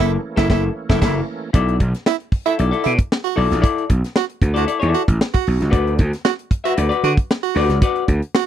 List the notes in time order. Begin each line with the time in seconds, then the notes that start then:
Already playing: F#1 E3 A3 A#3 C#4 E4 A4
0.00 A#3 E4
0.36 F#1 A#3 E4 A4, kick, snare
0.49 F#1 A#3 E4 A4, kick, snare
0.89 F#1 A#3 E4 A4, kick, snare
1.01 F#1 A#3 E4 A4, kick, snare, crash
1.53 B1 E4 A4 D5, kick, closed hi-hat
1.68 closed hi-hat
1.80 B1, kick, closed hi-hat
1.94 snare, closed hi-hat
2.06 E4, snare
2.20 closed hi-hat
2.32 kick, open hi-hat
2.46 E4 A4 E5, closed hi-hat
2.58 B1 E4 A4 D5, closed hi-hat
2.71 E4 A4 D5, closed hi-hat
2.84 B2 E4, closed hi-hat
2.99 kick, closed hi-hat
3.12 snare
3.24 F#4, closed hi-hat
3.36 B1 E4 A4 D5, open hi-hat
3.51 A#1, snare, closed hi-hat
3.61 E4 A4 D5, kick, closed hi-hat
3.78 closed hi-hat
3.90 B1, kick, closed hi-hat
4.04 snare, closed hi-hat
4.16 F#4, snare
4.29 closed hi-hat
4.42 D2, kick, closed hi-hat
4.54 E4 F#4 A4 D5, closed hi-hat
4.66 E4 A4 D5, closed hi-hat
4.80 E2 E4 A4 D5, closed hi-hat
4.94 F#4, closed hi-hat
5.08 A1, kick, closed hi-hat
5.21 snare
5.34 F#4, kick, closed hi-hat
5.47 B1, open hi-hat
5.61 C#2, snare, closed hi-hat
5.70 D2 F#4 B4 D5, kick, closed hi-hat
5.87 closed hi-hat
5.98 D2, kick, closed hi-hat
6.13 snare, closed hi-hat
6.25 F#4, snare
6.39 closed hi-hat
6.51 kick, closed hi-hat
6.64 F#4 B4 E5, closed hi-hat
6.76 D2 F#4 B4 D5, closed hi-hat
6.89 F#4 B4 D5, closed hi-hat
7.03 D3 F#4, closed hi-hat
7.17 kick, closed hi-hat
7.31 snare
7.43 F#4, closed hi-hat
7.55 D2 F#4 B4 D5, open hi-hat
7.69 C#2, snare, closed hi-hat
7.82 F#4 B4 D5, kick, closed hi-hat
7.95 closed hi-hat
8.08 D2, kick, closed hi-hat
8.22 closed hi-hat
8.35 F#4, snare